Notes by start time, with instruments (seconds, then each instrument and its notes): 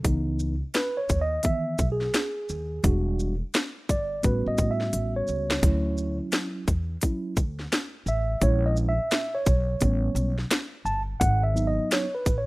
0.03 upright bass C#2, tine electric piano E3 B3 D#4, kick, closed hi-hat
0.40 shaker
0.74 tine electric piano B4, snare, closed hi-hat
0.97 tine electric piano C#5
1.09 upright bass D#2, kick, closed hi-hat, shaker
1.21 tine electric piano D#5
1.43 tine electric piano D#3 E3 B3 E5, kick, closed hi-hat
1.78 upright bass B1, kick, closed hi-hat, shaker
1.92 tine electric piano G#4
2.01 snare
2.14 snare, closed hi-hat
2.49 upright bass D#2, shaker
2.84 upright bass E1, tine electric piano G3 D4 F#4, kick, closed hi-hat
3.20 shaker
3.54 snare, closed hi-hat
3.89 upright bass G1, tine electric piano D5, kick, closed hi-hat, shaker
4.23 upright bass A1, tine electric piano G3 B3 C#4 F#4 B4, kick, closed hi-hat
4.46 upright bass A1, tine electric piano D#5
4.58 upright bass A2, kick, closed hi-hat, shaker
4.71 tine electric piano E5
4.81 snare
4.93 upright bass A1, closed hi-hat
5.16 tine electric piano C#5
5.28 upright bass C#2, shaker
5.51 snare
5.63 upright bass D2, tine electric piano F#3 C#4 E4, kick, closed hi-hat
5.98 shaker
6.32 snare, closed hi-hat
6.68 upright bass E2, kick, closed hi-hat, shaker
7.01 tine electric piano F#3 C#4 E4, kick, closed hi-hat
7.37 upright bass D2, kick, closed hi-hat, shaker
7.59 snare
7.72 snare, closed hi-hat
8.06 upright bass A1, tine electric piano E5, shaker
8.41 upright bass A#1, tine electric piano G#3 C#4 E4 C#5, kick, closed hi-hat
8.66 tine electric piano D#5
8.77 shaker
8.89 tine electric piano E5
9.11 snare, closed hi-hat
9.35 tine electric piano C#5
9.46 upright bass B1, kick, closed hi-hat, shaker
9.81 upright bass A1, tine electric piano G3 B3 C#4, kick, closed hi-hat
10.15 upright bass B1, closed hi-hat, shaker
10.38 snare
10.51 snare, closed hi-hat
10.85 upright bass G1, tine electric piano A5, shaker
11.20 upright bass G#1, tine electric piano F#5, kick, closed hi-hat
11.43 tine electric piano E5
11.54 tine electric piano F#3 B3 D#4, shaker
11.67 tine electric piano D#5
11.91 tine electric piano C#5, snare, closed hi-hat
12.15 tine electric piano B4
12.26 upright bass A1, kick, closed hi-hat, shaker
12.38 tine electric piano C#5